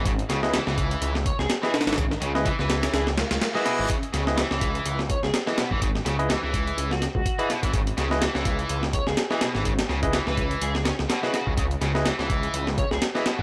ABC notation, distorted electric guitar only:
X:1
M:4/4
L:1/16
Q:"Swing 16ths" 1/4=125
K:C#m
V:1 name="Distorted electric guitar" clef=bass
C, z C, z E, E,4 z4 E, B,, E, | C, z C, z E, E,4 z4 E, B,, E, | C, z C, z E, E,4 z4 E, B,, E, | C, z C, z E, E,4 z4 E, B,, E, |
C, z C, z E, E,4 z4 E, B,, E, | C, z C, z E, E,4 z C z B,, C, C, C, | C, z C, z E, E,4 z4 E, B,, E, |]